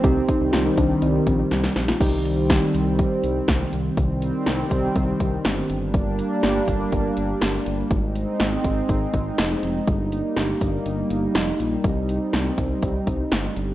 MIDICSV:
0, 0, Header, 1, 6, 480
1, 0, Start_track
1, 0, Key_signature, -3, "minor"
1, 0, Tempo, 491803
1, 38, Time_signature, 4, 2, 24, 8
1, 13413, End_track
2, 0, Start_track
2, 0, Title_t, "Synth pluck"
2, 0, Program_c, 0, 84
2, 38, Note_on_c, 0, 67, 92
2, 182, Note_off_c, 0, 67, 0
2, 278, Note_on_c, 0, 63, 83
2, 422, Note_off_c, 0, 63, 0
2, 518, Note_on_c, 0, 65, 88
2, 590, Note_off_c, 0, 65, 0
2, 638, Note_on_c, 0, 63, 74
2, 710, Note_off_c, 0, 63, 0
2, 758, Note_on_c, 0, 62, 83
2, 903, Note_off_c, 0, 62, 0
2, 997, Note_on_c, 0, 63, 88
2, 1142, Note_off_c, 0, 63, 0
2, 1237, Note_on_c, 0, 60, 81
2, 1309, Note_off_c, 0, 60, 0
2, 1358, Note_on_c, 0, 63, 76
2, 1502, Note_off_c, 0, 63, 0
2, 1718, Note_on_c, 0, 60, 84
2, 1790, Note_off_c, 0, 60, 0
2, 1838, Note_on_c, 0, 65, 78
2, 1910, Note_off_c, 0, 65, 0
2, 13413, End_track
3, 0, Start_track
3, 0, Title_t, "Tine electric piano"
3, 0, Program_c, 1, 4
3, 37, Note_on_c, 1, 63, 75
3, 38, Note_on_c, 1, 60, 81
3, 38, Note_on_c, 1, 67, 85
3, 1919, Note_off_c, 1, 60, 0
3, 1919, Note_off_c, 1, 63, 0
3, 1919, Note_off_c, 1, 67, 0
3, 1957, Note_on_c, 1, 60, 75
3, 1957, Note_on_c, 1, 63, 70
3, 1957, Note_on_c, 1, 67, 83
3, 3839, Note_off_c, 1, 60, 0
3, 3839, Note_off_c, 1, 63, 0
3, 3839, Note_off_c, 1, 67, 0
3, 13413, End_track
4, 0, Start_track
4, 0, Title_t, "Analog synth pad"
4, 0, Program_c, 2, 89
4, 0, Note_on_c, 2, 60, 95
4, 38, Note_on_c, 2, 51, 85
4, 38, Note_on_c, 2, 55, 78
4, 1919, Note_off_c, 2, 60, 0
4, 1939, Note_off_c, 2, 51, 0
4, 1939, Note_off_c, 2, 55, 0
4, 1958, Note_on_c, 2, 51, 82
4, 1958, Note_on_c, 2, 55, 72
4, 1958, Note_on_c, 2, 60, 92
4, 3859, Note_off_c, 2, 51, 0
4, 3859, Note_off_c, 2, 55, 0
4, 3859, Note_off_c, 2, 60, 0
4, 3877, Note_on_c, 2, 51, 82
4, 3877, Note_on_c, 2, 55, 77
4, 3877, Note_on_c, 2, 60, 92
4, 5540, Note_off_c, 2, 51, 0
4, 5541, Note_off_c, 2, 55, 0
4, 5541, Note_off_c, 2, 60, 0
4, 5558, Note_on_c, 2, 55, 80
4, 5558, Note_on_c, 2, 58, 74
4, 5558, Note_on_c, 2, 62, 91
4, 7696, Note_off_c, 2, 55, 0
4, 7696, Note_off_c, 2, 58, 0
4, 7696, Note_off_c, 2, 62, 0
4, 7717, Note_on_c, 2, 60, 75
4, 7718, Note_on_c, 2, 56, 81
4, 7718, Note_on_c, 2, 63, 90
4, 9618, Note_off_c, 2, 56, 0
4, 9618, Note_off_c, 2, 60, 0
4, 9639, Note_on_c, 2, 55, 84
4, 9639, Note_on_c, 2, 58, 76
4, 11539, Note_off_c, 2, 58, 0
4, 11557, Note_on_c, 2, 60, 75
4, 13199, Note_off_c, 2, 63, 0
4, 13202, Note_off_c, 2, 55, 0
4, 13221, Note_off_c, 2, 60, 0
4, 13237, Note_on_c, 2, 55, 80
4, 13237, Note_on_c, 2, 58, 74
4, 13237, Note_on_c, 2, 62, 90
4, 13413, Note_off_c, 2, 55, 0
4, 13413, Note_off_c, 2, 58, 0
4, 13413, Note_off_c, 2, 62, 0
4, 13413, End_track
5, 0, Start_track
5, 0, Title_t, "Analog synth bass"
5, 0, Program_c, 3, 38
5, 37, Note_on_c, 3, 36, 111
5, 205, Note_off_c, 3, 36, 0
5, 397, Note_on_c, 3, 36, 93
5, 482, Note_off_c, 3, 36, 0
5, 517, Note_on_c, 3, 36, 93
5, 686, Note_off_c, 3, 36, 0
5, 757, Note_on_c, 3, 36, 99
5, 925, Note_off_c, 3, 36, 0
5, 997, Note_on_c, 3, 36, 113
5, 1165, Note_off_c, 3, 36, 0
5, 1237, Note_on_c, 3, 34, 94
5, 1405, Note_off_c, 3, 34, 0
5, 1477, Note_on_c, 3, 36, 96
5, 1645, Note_off_c, 3, 36, 0
5, 1718, Note_on_c, 3, 34, 95
5, 1886, Note_off_c, 3, 34, 0
5, 1958, Note_on_c, 3, 36, 112
5, 2528, Note_off_c, 3, 36, 0
5, 2677, Note_on_c, 3, 36, 94
5, 2929, Note_off_c, 3, 36, 0
5, 3157, Note_on_c, 3, 36, 99
5, 3326, Note_off_c, 3, 36, 0
5, 3399, Note_on_c, 3, 36, 96
5, 3567, Note_off_c, 3, 36, 0
5, 3638, Note_on_c, 3, 36, 102
5, 3806, Note_off_c, 3, 36, 0
5, 3878, Note_on_c, 3, 36, 103
5, 4214, Note_off_c, 3, 36, 0
5, 4358, Note_on_c, 3, 36, 92
5, 4526, Note_off_c, 3, 36, 0
5, 4597, Note_on_c, 3, 36, 96
5, 4765, Note_off_c, 3, 36, 0
5, 4839, Note_on_c, 3, 36, 103
5, 5006, Note_off_c, 3, 36, 0
5, 5078, Note_on_c, 3, 36, 88
5, 5246, Note_off_c, 3, 36, 0
5, 5318, Note_on_c, 3, 31, 91
5, 5486, Note_off_c, 3, 31, 0
5, 5558, Note_on_c, 3, 31, 93
5, 6062, Note_off_c, 3, 31, 0
5, 6278, Note_on_c, 3, 31, 103
5, 6446, Note_off_c, 3, 31, 0
5, 6517, Note_on_c, 3, 31, 99
5, 6685, Note_off_c, 3, 31, 0
5, 6759, Note_on_c, 3, 31, 107
5, 6926, Note_off_c, 3, 31, 0
5, 6998, Note_on_c, 3, 31, 91
5, 7166, Note_off_c, 3, 31, 0
5, 7238, Note_on_c, 3, 31, 95
5, 7406, Note_off_c, 3, 31, 0
5, 7479, Note_on_c, 3, 31, 94
5, 7646, Note_off_c, 3, 31, 0
5, 7718, Note_on_c, 3, 32, 105
5, 8054, Note_off_c, 3, 32, 0
5, 8198, Note_on_c, 3, 32, 97
5, 8366, Note_off_c, 3, 32, 0
5, 8437, Note_on_c, 3, 32, 100
5, 8605, Note_off_c, 3, 32, 0
5, 8678, Note_on_c, 3, 32, 105
5, 8846, Note_off_c, 3, 32, 0
5, 8917, Note_on_c, 3, 32, 98
5, 9085, Note_off_c, 3, 32, 0
5, 9158, Note_on_c, 3, 29, 96
5, 9326, Note_off_c, 3, 29, 0
5, 9398, Note_on_c, 3, 29, 92
5, 9566, Note_off_c, 3, 29, 0
5, 9638, Note_on_c, 3, 31, 103
5, 9974, Note_off_c, 3, 31, 0
5, 10118, Note_on_c, 3, 31, 102
5, 10286, Note_off_c, 3, 31, 0
5, 10357, Note_on_c, 3, 31, 105
5, 10525, Note_off_c, 3, 31, 0
5, 10598, Note_on_c, 3, 31, 97
5, 10766, Note_off_c, 3, 31, 0
5, 10838, Note_on_c, 3, 31, 101
5, 11006, Note_off_c, 3, 31, 0
5, 11078, Note_on_c, 3, 29, 94
5, 11246, Note_off_c, 3, 29, 0
5, 11318, Note_on_c, 3, 34, 92
5, 11486, Note_off_c, 3, 34, 0
5, 11558, Note_on_c, 3, 36, 102
5, 11894, Note_off_c, 3, 36, 0
5, 12038, Note_on_c, 3, 36, 94
5, 12206, Note_off_c, 3, 36, 0
5, 12277, Note_on_c, 3, 36, 98
5, 12445, Note_off_c, 3, 36, 0
5, 12518, Note_on_c, 3, 36, 100
5, 12686, Note_off_c, 3, 36, 0
5, 12757, Note_on_c, 3, 36, 90
5, 12925, Note_off_c, 3, 36, 0
5, 12997, Note_on_c, 3, 31, 90
5, 13165, Note_off_c, 3, 31, 0
5, 13237, Note_on_c, 3, 31, 94
5, 13413, Note_off_c, 3, 31, 0
5, 13413, End_track
6, 0, Start_track
6, 0, Title_t, "Drums"
6, 37, Note_on_c, 9, 42, 80
6, 38, Note_on_c, 9, 36, 127
6, 134, Note_off_c, 9, 42, 0
6, 135, Note_off_c, 9, 36, 0
6, 278, Note_on_c, 9, 36, 96
6, 278, Note_on_c, 9, 42, 79
6, 376, Note_off_c, 9, 36, 0
6, 376, Note_off_c, 9, 42, 0
6, 516, Note_on_c, 9, 38, 120
6, 518, Note_on_c, 9, 42, 64
6, 614, Note_off_c, 9, 38, 0
6, 615, Note_off_c, 9, 42, 0
6, 757, Note_on_c, 9, 36, 89
6, 757, Note_on_c, 9, 42, 89
6, 854, Note_off_c, 9, 36, 0
6, 854, Note_off_c, 9, 42, 0
6, 995, Note_on_c, 9, 42, 80
6, 1093, Note_off_c, 9, 42, 0
6, 1237, Note_on_c, 9, 36, 85
6, 1237, Note_on_c, 9, 42, 83
6, 1334, Note_off_c, 9, 42, 0
6, 1335, Note_off_c, 9, 36, 0
6, 1475, Note_on_c, 9, 42, 71
6, 1478, Note_on_c, 9, 38, 61
6, 1572, Note_off_c, 9, 42, 0
6, 1575, Note_off_c, 9, 38, 0
6, 1598, Note_on_c, 9, 38, 67
6, 1696, Note_off_c, 9, 38, 0
6, 1718, Note_on_c, 9, 38, 90
6, 1719, Note_on_c, 9, 46, 69
6, 1816, Note_off_c, 9, 38, 0
6, 1817, Note_off_c, 9, 46, 0
6, 1838, Note_on_c, 9, 38, 92
6, 1936, Note_off_c, 9, 38, 0
6, 1958, Note_on_c, 9, 36, 123
6, 1958, Note_on_c, 9, 42, 76
6, 1958, Note_on_c, 9, 49, 93
6, 2055, Note_off_c, 9, 36, 0
6, 2055, Note_off_c, 9, 42, 0
6, 2056, Note_off_c, 9, 49, 0
6, 2199, Note_on_c, 9, 42, 73
6, 2297, Note_off_c, 9, 42, 0
6, 2438, Note_on_c, 9, 38, 117
6, 2439, Note_on_c, 9, 36, 106
6, 2439, Note_on_c, 9, 42, 59
6, 2535, Note_off_c, 9, 38, 0
6, 2536, Note_off_c, 9, 36, 0
6, 2537, Note_off_c, 9, 42, 0
6, 2678, Note_on_c, 9, 42, 84
6, 2775, Note_off_c, 9, 42, 0
6, 2916, Note_on_c, 9, 42, 75
6, 2919, Note_on_c, 9, 36, 109
6, 3014, Note_off_c, 9, 42, 0
6, 3016, Note_off_c, 9, 36, 0
6, 3157, Note_on_c, 9, 42, 79
6, 3255, Note_off_c, 9, 42, 0
6, 3395, Note_on_c, 9, 42, 68
6, 3398, Note_on_c, 9, 38, 117
6, 3400, Note_on_c, 9, 36, 102
6, 3492, Note_off_c, 9, 42, 0
6, 3495, Note_off_c, 9, 38, 0
6, 3497, Note_off_c, 9, 36, 0
6, 3639, Note_on_c, 9, 42, 67
6, 3736, Note_off_c, 9, 42, 0
6, 3878, Note_on_c, 9, 36, 120
6, 3878, Note_on_c, 9, 42, 75
6, 3975, Note_off_c, 9, 42, 0
6, 3976, Note_off_c, 9, 36, 0
6, 4119, Note_on_c, 9, 42, 73
6, 4217, Note_off_c, 9, 42, 0
6, 4357, Note_on_c, 9, 38, 110
6, 4358, Note_on_c, 9, 42, 58
6, 4454, Note_off_c, 9, 38, 0
6, 4456, Note_off_c, 9, 42, 0
6, 4597, Note_on_c, 9, 36, 84
6, 4597, Note_on_c, 9, 42, 82
6, 4695, Note_off_c, 9, 36, 0
6, 4695, Note_off_c, 9, 42, 0
6, 4836, Note_on_c, 9, 42, 76
6, 4839, Note_on_c, 9, 36, 88
6, 4934, Note_off_c, 9, 42, 0
6, 4936, Note_off_c, 9, 36, 0
6, 5077, Note_on_c, 9, 42, 81
6, 5078, Note_on_c, 9, 36, 83
6, 5174, Note_off_c, 9, 42, 0
6, 5175, Note_off_c, 9, 36, 0
6, 5315, Note_on_c, 9, 42, 69
6, 5318, Note_on_c, 9, 38, 120
6, 5412, Note_off_c, 9, 42, 0
6, 5415, Note_off_c, 9, 38, 0
6, 5559, Note_on_c, 9, 42, 69
6, 5657, Note_off_c, 9, 42, 0
6, 5797, Note_on_c, 9, 42, 74
6, 5798, Note_on_c, 9, 36, 123
6, 5894, Note_off_c, 9, 42, 0
6, 5895, Note_off_c, 9, 36, 0
6, 6039, Note_on_c, 9, 42, 69
6, 6136, Note_off_c, 9, 42, 0
6, 6277, Note_on_c, 9, 38, 113
6, 6278, Note_on_c, 9, 42, 61
6, 6374, Note_off_c, 9, 38, 0
6, 6376, Note_off_c, 9, 42, 0
6, 6517, Note_on_c, 9, 36, 80
6, 6517, Note_on_c, 9, 42, 83
6, 6615, Note_off_c, 9, 36, 0
6, 6615, Note_off_c, 9, 42, 0
6, 6756, Note_on_c, 9, 42, 76
6, 6759, Note_on_c, 9, 36, 90
6, 6853, Note_off_c, 9, 42, 0
6, 6856, Note_off_c, 9, 36, 0
6, 6996, Note_on_c, 9, 42, 79
6, 7094, Note_off_c, 9, 42, 0
6, 7234, Note_on_c, 9, 42, 69
6, 7238, Note_on_c, 9, 38, 117
6, 7332, Note_off_c, 9, 42, 0
6, 7335, Note_off_c, 9, 38, 0
6, 7479, Note_on_c, 9, 42, 67
6, 7576, Note_off_c, 9, 42, 0
6, 7717, Note_on_c, 9, 42, 76
6, 7718, Note_on_c, 9, 36, 120
6, 7815, Note_off_c, 9, 36, 0
6, 7815, Note_off_c, 9, 42, 0
6, 7959, Note_on_c, 9, 42, 72
6, 8056, Note_off_c, 9, 42, 0
6, 8196, Note_on_c, 9, 38, 114
6, 8198, Note_on_c, 9, 42, 61
6, 8294, Note_off_c, 9, 38, 0
6, 8295, Note_off_c, 9, 42, 0
6, 8437, Note_on_c, 9, 36, 82
6, 8437, Note_on_c, 9, 42, 86
6, 8534, Note_off_c, 9, 36, 0
6, 8534, Note_off_c, 9, 42, 0
6, 8676, Note_on_c, 9, 42, 76
6, 8678, Note_on_c, 9, 36, 92
6, 8773, Note_off_c, 9, 42, 0
6, 8776, Note_off_c, 9, 36, 0
6, 8916, Note_on_c, 9, 42, 78
6, 8917, Note_on_c, 9, 36, 83
6, 9014, Note_off_c, 9, 42, 0
6, 9015, Note_off_c, 9, 36, 0
6, 9154, Note_on_c, 9, 42, 67
6, 9158, Note_on_c, 9, 38, 120
6, 9252, Note_off_c, 9, 42, 0
6, 9255, Note_off_c, 9, 38, 0
6, 9399, Note_on_c, 9, 42, 69
6, 9497, Note_off_c, 9, 42, 0
6, 9637, Note_on_c, 9, 42, 75
6, 9638, Note_on_c, 9, 36, 118
6, 9735, Note_off_c, 9, 42, 0
6, 9736, Note_off_c, 9, 36, 0
6, 9879, Note_on_c, 9, 42, 71
6, 9976, Note_off_c, 9, 42, 0
6, 10117, Note_on_c, 9, 38, 109
6, 10118, Note_on_c, 9, 42, 61
6, 10214, Note_off_c, 9, 38, 0
6, 10216, Note_off_c, 9, 42, 0
6, 10357, Note_on_c, 9, 36, 81
6, 10357, Note_on_c, 9, 42, 85
6, 10455, Note_off_c, 9, 36, 0
6, 10455, Note_off_c, 9, 42, 0
6, 10596, Note_on_c, 9, 42, 76
6, 10694, Note_off_c, 9, 42, 0
6, 10837, Note_on_c, 9, 42, 80
6, 10935, Note_off_c, 9, 42, 0
6, 11075, Note_on_c, 9, 42, 70
6, 11078, Note_on_c, 9, 38, 116
6, 11172, Note_off_c, 9, 42, 0
6, 11176, Note_off_c, 9, 38, 0
6, 11319, Note_on_c, 9, 42, 69
6, 11417, Note_off_c, 9, 42, 0
6, 11557, Note_on_c, 9, 42, 74
6, 11558, Note_on_c, 9, 36, 122
6, 11655, Note_off_c, 9, 42, 0
6, 11656, Note_off_c, 9, 36, 0
6, 11799, Note_on_c, 9, 42, 72
6, 11897, Note_off_c, 9, 42, 0
6, 12037, Note_on_c, 9, 38, 109
6, 12038, Note_on_c, 9, 42, 61
6, 12134, Note_off_c, 9, 38, 0
6, 12136, Note_off_c, 9, 42, 0
6, 12277, Note_on_c, 9, 36, 82
6, 12277, Note_on_c, 9, 42, 87
6, 12374, Note_off_c, 9, 36, 0
6, 12374, Note_off_c, 9, 42, 0
6, 12516, Note_on_c, 9, 42, 76
6, 12518, Note_on_c, 9, 36, 91
6, 12613, Note_off_c, 9, 42, 0
6, 12616, Note_off_c, 9, 36, 0
6, 12757, Note_on_c, 9, 36, 83
6, 12757, Note_on_c, 9, 42, 79
6, 12854, Note_off_c, 9, 42, 0
6, 12855, Note_off_c, 9, 36, 0
6, 12995, Note_on_c, 9, 42, 67
6, 12998, Note_on_c, 9, 38, 120
6, 13092, Note_off_c, 9, 42, 0
6, 13095, Note_off_c, 9, 38, 0
6, 13239, Note_on_c, 9, 42, 65
6, 13336, Note_off_c, 9, 42, 0
6, 13413, End_track
0, 0, End_of_file